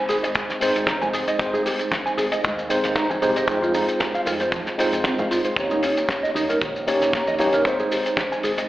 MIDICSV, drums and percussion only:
0, 0, Header, 1, 2, 480
1, 0, Start_track
1, 0, Key_signature, -4, "major"
1, 0, Tempo, 521739
1, 1284, Time_signature, 4, 2, 24, 8
1, 7992, End_track
2, 0, Start_track
2, 0, Title_t, "Drums"
2, 80, Note_on_c, 9, 46, 91
2, 82, Note_on_c, 9, 63, 69
2, 92, Note_on_c, 9, 82, 85
2, 172, Note_off_c, 9, 46, 0
2, 174, Note_off_c, 9, 63, 0
2, 184, Note_off_c, 9, 82, 0
2, 213, Note_on_c, 9, 63, 66
2, 219, Note_on_c, 9, 82, 56
2, 220, Note_on_c, 9, 42, 77
2, 305, Note_off_c, 9, 63, 0
2, 311, Note_off_c, 9, 82, 0
2, 312, Note_off_c, 9, 42, 0
2, 319, Note_on_c, 9, 42, 73
2, 326, Note_on_c, 9, 36, 110
2, 330, Note_on_c, 9, 82, 64
2, 411, Note_off_c, 9, 42, 0
2, 418, Note_off_c, 9, 36, 0
2, 422, Note_off_c, 9, 82, 0
2, 460, Note_on_c, 9, 38, 36
2, 460, Note_on_c, 9, 82, 41
2, 552, Note_off_c, 9, 38, 0
2, 552, Note_off_c, 9, 82, 0
2, 564, Note_on_c, 9, 46, 121
2, 570, Note_on_c, 9, 82, 92
2, 656, Note_off_c, 9, 46, 0
2, 662, Note_off_c, 9, 82, 0
2, 698, Note_on_c, 9, 42, 79
2, 701, Note_on_c, 9, 82, 54
2, 790, Note_off_c, 9, 42, 0
2, 793, Note_off_c, 9, 82, 0
2, 799, Note_on_c, 9, 36, 117
2, 801, Note_on_c, 9, 38, 127
2, 801, Note_on_c, 9, 42, 74
2, 805, Note_on_c, 9, 82, 62
2, 891, Note_off_c, 9, 36, 0
2, 893, Note_off_c, 9, 38, 0
2, 893, Note_off_c, 9, 42, 0
2, 897, Note_off_c, 9, 82, 0
2, 934, Note_on_c, 9, 63, 87
2, 935, Note_on_c, 9, 64, 79
2, 939, Note_on_c, 9, 82, 42
2, 1026, Note_off_c, 9, 63, 0
2, 1027, Note_off_c, 9, 64, 0
2, 1031, Note_off_c, 9, 82, 0
2, 1044, Note_on_c, 9, 46, 90
2, 1049, Note_on_c, 9, 82, 89
2, 1136, Note_off_c, 9, 46, 0
2, 1141, Note_off_c, 9, 82, 0
2, 1174, Note_on_c, 9, 42, 80
2, 1177, Note_on_c, 9, 82, 45
2, 1266, Note_off_c, 9, 42, 0
2, 1269, Note_off_c, 9, 82, 0
2, 1283, Note_on_c, 9, 36, 127
2, 1288, Note_on_c, 9, 42, 69
2, 1291, Note_on_c, 9, 82, 58
2, 1375, Note_off_c, 9, 36, 0
2, 1380, Note_off_c, 9, 42, 0
2, 1383, Note_off_c, 9, 82, 0
2, 1411, Note_on_c, 9, 63, 73
2, 1421, Note_on_c, 9, 82, 42
2, 1503, Note_off_c, 9, 63, 0
2, 1513, Note_off_c, 9, 82, 0
2, 1526, Note_on_c, 9, 46, 117
2, 1532, Note_on_c, 9, 82, 81
2, 1618, Note_off_c, 9, 46, 0
2, 1624, Note_off_c, 9, 82, 0
2, 1650, Note_on_c, 9, 42, 69
2, 1660, Note_on_c, 9, 82, 49
2, 1742, Note_off_c, 9, 42, 0
2, 1752, Note_off_c, 9, 82, 0
2, 1763, Note_on_c, 9, 36, 119
2, 1764, Note_on_c, 9, 42, 62
2, 1769, Note_on_c, 9, 38, 127
2, 1771, Note_on_c, 9, 82, 57
2, 1855, Note_off_c, 9, 36, 0
2, 1856, Note_off_c, 9, 42, 0
2, 1861, Note_off_c, 9, 38, 0
2, 1863, Note_off_c, 9, 82, 0
2, 1901, Note_on_c, 9, 82, 42
2, 1993, Note_off_c, 9, 82, 0
2, 2003, Note_on_c, 9, 63, 73
2, 2006, Note_on_c, 9, 46, 93
2, 2009, Note_on_c, 9, 82, 88
2, 2095, Note_off_c, 9, 63, 0
2, 2098, Note_off_c, 9, 46, 0
2, 2101, Note_off_c, 9, 82, 0
2, 2135, Note_on_c, 9, 42, 85
2, 2138, Note_on_c, 9, 63, 64
2, 2142, Note_on_c, 9, 82, 47
2, 2227, Note_off_c, 9, 42, 0
2, 2230, Note_off_c, 9, 63, 0
2, 2234, Note_off_c, 9, 82, 0
2, 2247, Note_on_c, 9, 82, 55
2, 2249, Note_on_c, 9, 42, 63
2, 2250, Note_on_c, 9, 36, 112
2, 2339, Note_off_c, 9, 82, 0
2, 2341, Note_off_c, 9, 42, 0
2, 2342, Note_off_c, 9, 36, 0
2, 2379, Note_on_c, 9, 82, 43
2, 2471, Note_off_c, 9, 82, 0
2, 2485, Note_on_c, 9, 46, 113
2, 2488, Note_on_c, 9, 82, 86
2, 2577, Note_off_c, 9, 46, 0
2, 2580, Note_off_c, 9, 82, 0
2, 2608, Note_on_c, 9, 38, 41
2, 2610, Note_on_c, 9, 42, 80
2, 2617, Note_on_c, 9, 82, 51
2, 2700, Note_off_c, 9, 38, 0
2, 2702, Note_off_c, 9, 42, 0
2, 2709, Note_off_c, 9, 82, 0
2, 2720, Note_on_c, 9, 38, 127
2, 2720, Note_on_c, 9, 42, 63
2, 2720, Note_on_c, 9, 82, 61
2, 2722, Note_on_c, 9, 36, 123
2, 2812, Note_off_c, 9, 38, 0
2, 2812, Note_off_c, 9, 42, 0
2, 2812, Note_off_c, 9, 82, 0
2, 2814, Note_off_c, 9, 36, 0
2, 2855, Note_on_c, 9, 64, 87
2, 2857, Note_on_c, 9, 82, 39
2, 2947, Note_off_c, 9, 64, 0
2, 2949, Note_off_c, 9, 82, 0
2, 2963, Note_on_c, 9, 46, 91
2, 2970, Note_on_c, 9, 82, 83
2, 3055, Note_off_c, 9, 46, 0
2, 3062, Note_off_c, 9, 82, 0
2, 3092, Note_on_c, 9, 42, 77
2, 3098, Note_on_c, 9, 82, 54
2, 3184, Note_off_c, 9, 42, 0
2, 3190, Note_off_c, 9, 82, 0
2, 3197, Note_on_c, 9, 42, 68
2, 3199, Note_on_c, 9, 36, 124
2, 3212, Note_on_c, 9, 82, 65
2, 3289, Note_off_c, 9, 42, 0
2, 3291, Note_off_c, 9, 36, 0
2, 3304, Note_off_c, 9, 82, 0
2, 3328, Note_on_c, 9, 63, 74
2, 3342, Note_on_c, 9, 82, 37
2, 3420, Note_off_c, 9, 63, 0
2, 3434, Note_off_c, 9, 82, 0
2, 3444, Note_on_c, 9, 82, 82
2, 3445, Note_on_c, 9, 46, 108
2, 3536, Note_off_c, 9, 82, 0
2, 3537, Note_off_c, 9, 46, 0
2, 3575, Note_on_c, 9, 42, 69
2, 3575, Note_on_c, 9, 82, 47
2, 3667, Note_off_c, 9, 42, 0
2, 3667, Note_off_c, 9, 82, 0
2, 3681, Note_on_c, 9, 42, 64
2, 3684, Note_on_c, 9, 38, 123
2, 3687, Note_on_c, 9, 36, 126
2, 3693, Note_on_c, 9, 82, 56
2, 3773, Note_off_c, 9, 42, 0
2, 3776, Note_off_c, 9, 38, 0
2, 3779, Note_off_c, 9, 36, 0
2, 3785, Note_off_c, 9, 82, 0
2, 3817, Note_on_c, 9, 82, 36
2, 3909, Note_off_c, 9, 82, 0
2, 3917, Note_on_c, 9, 63, 69
2, 3924, Note_on_c, 9, 82, 89
2, 3930, Note_on_c, 9, 46, 98
2, 4009, Note_off_c, 9, 63, 0
2, 4016, Note_off_c, 9, 82, 0
2, 4022, Note_off_c, 9, 46, 0
2, 4046, Note_on_c, 9, 42, 75
2, 4052, Note_on_c, 9, 63, 67
2, 4056, Note_on_c, 9, 82, 51
2, 4138, Note_off_c, 9, 42, 0
2, 4144, Note_off_c, 9, 63, 0
2, 4148, Note_off_c, 9, 82, 0
2, 4159, Note_on_c, 9, 36, 122
2, 4162, Note_on_c, 9, 42, 68
2, 4166, Note_on_c, 9, 82, 58
2, 4251, Note_off_c, 9, 36, 0
2, 4254, Note_off_c, 9, 42, 0
2, 4258, Note_off_c, 9, 82, 0
2, 4290, Note_on_c, 9, 38, 38
2, 4295, Note_on_c, 9, 82, 40
2, 4382, Note_off_c, 9, 38, 0
2, 4387, Note_off_c, 9, 82, 0
2, 4405, Note_on_c, 9, 46, 107
2, 4417, Note_on_c, 9, 82, 92
2, 4497, Note_off_c, 9, 46, 0
2, 4509, Note_off_c, 9, 82, 0
2, 4534, Note_on_c, 9, 42, 73
2, 4542, Note_on_c, 9, 82, 54
2, 4626, Note_off_c, 9, 42, 0
2, 4634, Note_off_c, 9, 82, 0
2, 4637, Note_on_c, 9, 38, 120
2, 4644, Note_on_c, 9, 36, 119
2, 4646, Note_on_c, 9, 42, 59
2, 4657, Note_on_c, 9, 82, 64
2, 4729, Note_off_c, 9, 38, 0
2, 4736, Note_off_c, 9, 36, 0
2, 4738, Note_off_c, 9, 42, 0
2, 4749, Note_off_c, 9, 82, 0
2, 4772, Note_on_c, 9, 63, 94
2, 4772, Note_on_c, 9, 82, 42
2, 4773, Note_on_c, 9, 64, 78
2, 4864, Note_off_c, 9, 63, 0
2, 4864, Note_off_c, 9, 82, 0
2, 4865, Note_off_c, 9, 64, 0
2, 4886, Note_on_c, 9, 46, 103
2, 4894, Note_on_c, 9, 82, 81
2, 4978, Note_off_c, 9, 46, 0
2, 4986, Note_off_c, 9, 82, 0
2, 5010, Note_on_c, 9, 42, 67
2, 5011, Note_on_c, 9, 82, 47
2, 5102, Note_off_c, 9, 42, 0
2, 5103, Note_off_c, 9, 82, 0
2, 5119, Note_on_c, 9, 36, 112
2, 5121, Note_on_c, 9, 42, 65
2, 5129, Note_on_c, 9, 82, 65
2, 5211, Note_off_c, 9, 36, 0
2, 5213, Note_off_c, 9, 42, 0
2, 5221, Note_off_c, 9, 82, 0
2, 5251, Note_on_c, 9, 82, 42
2, 5258, Note_on_c, 9, 63, 73
2, 5343, Note_off_c, 9, 82, 0
2, 5350, Note_off_c, 9, 63, 0
2, 5361, Note_on_c, 9, 46, 111
2, 5367, Note_on_c, 9, 82, 78
2, 5453, Note_off_c, 9, 46, 0
2, 5459, Note_off_c, 9, 82, 0
2, 5496, Note_on_c, 9, 42, 76
2, 5497, Note_on_c, 9, 82, 49
2, 5588, Note_off_c, 9, 42, 0
2, 5589, Note_off_c, 9, 82, 0
2, 5600, Note_on_c, 9, 36, 119
2, 5604, Note_on_c, 9, 38, 112
2, 5605, Note_on_c, 9, 42, 68
2, 5614, Note_on_c, 9, 82, 57
2, 5692, Note_off_c, 9, 36, 0
2, 5696, Note_off_c, 9, 38, 0
2, 5697, Note_off_c, 9, 42, 0
2, 5706, Note_off_c, 9, 82, 0
2, 5748, Note_on_c, 9, 82, 39
2, 5834, Note_on_c, 9, 63, 64
2, 5840, Note_off_c, 9, 82, 0
2, 5850, Note_on_c, 9, 46, 90
2, 5853, Note_on_c, 9, 82, 85
2, 5926, Note_off_c, 9, 63, 0
2, 5942, Note_off_c, 9, 46, 0
2, 5945, Note_off_c, 9, 82, 0
2, 5973, Note_on_c, 9, 63, 73
2, 5979, Note_on_c, 9, 42, 71
2, 5979, Note_on_c, 9, 82, 52
2, 6065, Note_off_c, 9, 63, 0
2, 6071, Note_off_c, 9, 42, 0
2, 6071, Note_off_c, 9, 82, 0
2, 6086, Note_on_c, 9, 36, 126
2, 6086, Note_on_c, 9, 42, 57
2, 6091, Note_on_c, 9, 82, 57
2, 6178, Note_off_c, 9, 36, 0
2, 6178, Note_off_c, 9, 42, 0
2, 6183, Note_off_c, 9, 82, 0
2, 6221, Note_on_c, 9, 82, 38
2, 6313, Note_off_c, 9, 82, 0
2, 6327, Note_on_c, 9, 46, 117
2, 6330, Note_on_c, 9, 82, 81
2, 6419, Note_off_c, 9, 46, 0
2, 6422, Note_off_c, 9, 82, 0
2, 6450, Note_on_c, 9, 38, 35
2, 6456, Note_on_c, 9, 42, 71
2, 6462, Note_on_c, 9, 82, 53
2, 6542, Note_off_c, 9, 38, 0
2, 6548, Note_off_c, 9, 42, 0
2, 6554, Note_off_c, 9, 82, 0
2, 6563, Note_on_c, 9, 36, 127
2, 6565, Note_on_c, 9, 42, 60
2, 6568, Note_on_c, 9, 38, 108
2, 6572, Note_on_c, 9, 82, 64
2, 6655, Note_off_c, 9, 36, 0
2, 6657, Note_off_c, 9, 42, 0
2, 6660, Note_off_c, 9, 38, 0
2, 6664, Note_off_c, 9, 82, 0
2, 6692, Note_on_c, 9, 64, 78
2, 6693, Note_on_c, 9, 82, 40
2, 6784, Note_off_c, 9, 64, 0
2, 6785, Note_off_c, 9, 82, 0
2, 6795, Note_on_c, 9, 46, 98
2, 6813, Note_on_c, 9, 82, 82
2, 6887, Note_off_c, 9, 46, 0
2, 6905, Note_off_c, 9, 82, 0
2, 6925, Note_on_c, 9, 42, 74
2, 6935, Note_on_c, 9, 82, 54
2, 7017, Note_off_c, 9, 42, 0
2, 7027, Note_off_c, 9, 82, 0
2, 7039, Note_on_c, 9, 36, 110
2, 7040, Note_on_c, 9, 42, 65
2, 7054, Note_on_c, 9, 82, 58
2, 7131, Note_off_c, 9, 36, 0
2, 7132, Note_off_c, 9, 42, 0
2, 7146, Note_off_c, 9, 82, 0
2, 7171, Note_on_c, 9, 63, 65
2, 7173, Note_on_c, 9, 82, 44
2, 7263, Note_off_c, 9, 63, 0
2, 7265, Note_off_c, 9, 82, 0
2, 7284, Note_on_c, 9, 46, 101
2, 7284, Note_on_c, 9, 82, 93
2, 7376, Note_off_c, 9, 46, 0
2, 7376, Note_off_c, 9, 82, 0
2, 7414, Note_on_c, 9, 42, 73
2, 7420, Note_on_c, 9, 82, 49
2, 7506, Note_off_c, 9, 42, 0
2, 7512, Note_off_c, 9, 82, 0
2, 7516, Note_on_c, 9, 36, 115
2, 7520, Note_on_c, 9, 42, 63
2, 7523, Note_on_c, 9, 38, 105
2, 7531, Note_on_c, 9, 82, 56
2, 7608, Note_off_c, 9, 36, 0
2, 7612, Note_off_c, 9, 42, 0
2, 7615, Note_off_c, 9, 38, 0
2, 7623, Note_off_c, 9, 82, 0
2, 7658, Note_on_c, 9, 82, 43
2, 7750, Note_off_c, 9, 82, 0
2, 7759, Note_on_c, 9, 46, 91
2, 7762, Note_on_c, 9, 63, 66
2, 7770, Note_on_c, 9, 82, 88
2, 7851, Note_off_c, 9, 46, 0
2, 7854, Note_off_c, 9, 63, 0
2, 7862, Note_off_c, 9, 82, 0
2, 7886, Note_on_c, 9, 63, 67
2, 7891, Note_on_c, 9, 82, 50
2, 7893, Note_on_c, 9, 42, 82
2, 7978, Note_off_c, 9, 63, 0
2, 7983, Note_off_c, 9, 82, 0
2, 7985, Note_off_c, 9, 42, 0
2, 7992, End_track
0, 0, End_of_file